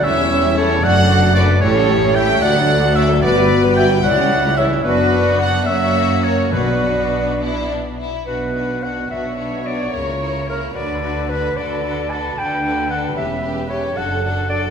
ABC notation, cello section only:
X:1
M:6/8
L:1/8
Q:3/8=74
K:Bm
V:1 name="Cello section" clef=bass
E,,3 F,,3 | A,,3 D,,3 | G,,3 C,,3 | F,,3 F,,3 |
B,,4- B,, z | B,,3 B,,3 | C,3 D,3 | D,3 D,3 |
E,,3 F,,3 |]